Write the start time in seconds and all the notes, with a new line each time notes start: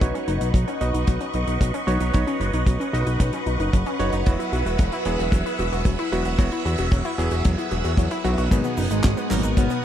0.01 B1 F#3 D#4 F#4 B4 C#5 D#5 F#5 C#6, kick, closed hi-hat, mid tom
0.14 C#4, closed hi-hat
0.28 F#1 D#4, closed hi-hat
0.41 B1 D#4, closed hi-hat
0.54 B1 F#3, kick, closed hi-hat, mid tom
0.68 C#4, closed hi-hat
0.81 B1 F#3 D#4 F#4 B4 D#5, closed hi-hat
0.94 B1 D#4, closed hi-hat
1.07 B1 F#3, kick, closed hi-hat, mid tom
1.21 C#4, closed hi-hat
1.34 B1 D#4, closed hi-hat
1.47 B1 D#4, closed hi-hat
1.61 B1 F#3, kick, closed hi-hat, mid tom
1.74 C#4, closed hi-hat
1.87 B1 F#3 D#4 F#4 B4 C#5, closed hi-hat
2.00 B1 D#4, closed hi-hat
2.13 B1 F#3 D#4 F#4 B4 C#5, kick, closed hi-hat, mid tom
2.27 C#4, closed hi-hat
2.40 F#1 D#4, closed hi-hat
2.53 B1 D#4, closed hi-hat
2.66 B1 F#3, kick, closed hi-hat, mid tom
2.80 C#4, closed hi-hat
2.93 B1 F#3 D#4 F#4 B4 D#5, closed hi-hat
3.06 B1 D#4, closed hi-hat
3.19 B1 F#3, kick, closed hi-hat, mid tom
3.33 C#4, closed hi-hat
3.46 B1 D#4, closed hi-hat
3.60 F#1 D#4, closed hi-hat
3.73 F#1 F#3, kick, closed hi-hat, mid tom
3.86 C#4, closed hi-hat
3.99 F#1 F#3 D#4 F#4 B4 C#5, closed hi-hat
4.13 F#1 D#4, closed hi-hat
4.26 E1 F#3 B3 E4 F#4 E5 E6, kick, closed hi-hat, mid tom
4.39 E4, closed hi-hat
4.52 B1 F#4, closed hi-hat, mid tom
4.66 E1 F#4, closed hi-hat
4.79 E1 F#3, kick, closed hi-hat, mid tom
4.92 E4, closed hi-hat
5.05 E1 F#3 B3 E4 G#4, closed hi-hat, mid tom
5.19 E1 F#4, closed hi-hat
5.32 E1 F#3, kick, closed hi-hat, mid tom
5.46 E4, closed hi-hat
5.59 E1 F#4, closed hi-hat, mid tom
5.72 E1 F#4, closed hi-hat
5.85 E1 F#3, kick, closed hi-hat, mid tom
5.99 E4, closed hi-hat
6.12 E1 F#3 B3 E4 F#4, closed hi-hat, mid tom
6.25 E1 F#4, closed hi-hat
6.38 E1 F#3 B3 E4 F#4, kick, closed hi-hat, mid tom
6.52 E4, closed hi-hat, mid tom
6.65 E2 F#4, closed hi-hat, mid tom
6.78 E1 F#4, closed hi-hat, mid tom
6.91 E1 F#3, kick, closed hi-hat, mid tom
7.05 E4, closed hi-hat, mid tom
7.18 E1 F#3 B3 E4 G#4, closed hi-hat, mid tom
7.31 E1 F#4, closed hi-hat, mid tom
7.45 E1 F#3, kick, closed hi-hat, mid tom
7.51 mid tom
7.58 E4, closed hi-hat, mid tom
7.65 mid tom
7.71 E1 F#4, closed hi-hat, mid tom
7.77 mid tom
7.84 E2 F#4, closed hi-hat, mid tom
7.91 mid tom
7.97 E2 F#3, kick, closed hi-hat, mid tom
8.05 mid tom
8.11 E4, closed hi-hat, mid tom
8.18 mid tom
8.24 B1 F#3 B3 E4 F#4, closed hi-hat, mid tom
8.31 mid tom
8.38 B1 F#4, closed hi-hat, mid tom
8.44 mid tom
8.51 G#1 B2 F#3 B3 D#4 F#4 G#4 F#5 G#5 D#6, kick, closed hi-hat, crash, cabasa
8.64 B3, closed hi-hat, high tom, cabasa
8.77 F#1 D#4, open hi-hat, cabasa
8.90 G#1 G#2 G#3 D#4, closed hi-hat, cabasa
9.04 G#1 F#3, kick, snare, clap, closed hi-hat, cabasa
9.17 B3, closed hi-hat, cabasa
9.30 G#1 A#2 F#3 A#3 B3 D#4 F#4 A#4, clap, open hi-hat, cabasa
9.43 G#1 D#4, closed hi-hat, cabasa
9.57 G#1 B2 F#3 B3, kick, closed hi-hat, cabasa
9.70 B3, closed hi-hat, cabasa